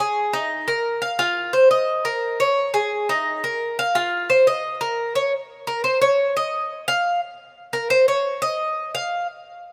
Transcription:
0.00 G#4
0.33 D#4
0.68 A#4
1.02 F5
1.19 F4
1.53 C5
1.71 D#5
2.05 A#4
2.40 C#5
2.74 G#4
3.09 D#4
3.44 A#4
3.79 F5
3.95 F4
4.30 C5
4.47 D#5
4.81 A#4
5.15 C#5
5.67 A#4
5.84 C5
6.02 C#5
6.37 D#5
6.88 F5
7.73 A#4
7.90 C5
8.08 C#5
8.42 D#5
8.95 F5

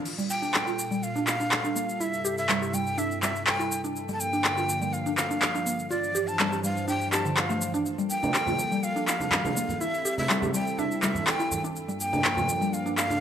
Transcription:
0.05 A#2 G3 F4 A4, crash, shaker
0.18 G3, shaker
0.30 G5, shaker
0.42 D4, shaker
0.54 clap, shaker
0.67 F4, shaker
0.79 shaker
0.91 G3, shaker
1.03 F5, shaker
1.16 D4, shaker
1.27 F5, clap, shaker
1.40 D4, shaker
1.52 clap, shaker
1.64 D4, shaker
1.76 A#3, shaker
1.89 shaker
2.00 G2 C3 E4 E5, shaker
2.14 shaker
2.25 G4, shaker
2.38 E5, shaker
2.49 G3, clap, shaker
2.62 G4, shaker
2.74 G3 G5, shaker
2.87 shaker
2.98 D4 E5, shaker
3.11 shaker
3.22 G3 E5, clap, shaker
3.36 shaker
3.47 G5, clap, shaker
3.59 E4, shaker
3.72 shaker
3.84 D4, shaker
3.96 D3 F3 A#3, shaker
4.09 G3, shaker
4.13 A5
4.20 G5, shaker
4.33 D4, shaker
4.44 clap, shaker
4.57 F4, shaker
4.69 shaker
4.82 G3, shaker
4.93 F5, shaker
5.06 D4, shaker
5.17 F5, clap, shaker
5.31 D4, shaker
5.42 clap, shaker
5.55 D4, shaker
5.66 A#3, shaker
5.79 shaker
5.90 G2 E3 D4 F4 C5 D5, shaker
6.04 shaker
6.15 G4, shaker
6.27 A5, shaker
6.39 G3, clap, shaker
6.52 G4, shaker
6.63 G3 F5, shaker
6.77 shaker
6.88 D4 G5, shaker
7.01 shaker
7.12 G4 A5, clap, shaker
7.25 D3, shaker
7.37 F5, clap, shaker
7.49 A3, shaker
7.61 shaker
7.74 D4, shaker
7.85 G3 A#3 A4, shaker
7.98 G3, shaker
8.10 G5, shaker
8.23 D4, high conga, shaker
8.34 clap, shaker
8.46 F4, high conga, low conga, shaker
8.59 shaker
8.72 G3, shaker
8.83 F5, shaker
8.96 D4, shaker
9.08 F5, clap, shaker
9.20 D4, high conga, shaker
9.31 clap, low conga, shaker
9.45 D4, high conga, shaker
9.57 A#3, shaker
9.69 low conga, shaker
9.80 G3 C4 E4 A4 E5, shaker
9.94 shaker
10.05 G4, shaker
10.18 E5, high conga, shaker
10.30 G3, clap, shaker
10.42 G4, high conga, low conga, shaker
10.54 G3 G5, shaker
10.67 shaker
10.78 D4 E5, high conga, shaker
10.91 shaker
11.03 G3 E5, clap, high conga, shaker
11.15 low conga, shaker
11.27 G5, clap, shaker
11.40 E4, shaker
11.51 low conga, shaker
11.64 D4, shaker
11.76 G2 F3 A#3 D4, shaker
11.88 G3, shaker
12.00 G5, shaker
12.13 D4, high conga, shaker
12.25 clap, shaker
12.37 F4, high conga, low conga, shaker
12.49 shaker
12.61 G3, shaker
12.73 F5, shaker
12.86 D4, shaker
12.97 F5, clap, shaker
13.10 D4, high conga, shaker

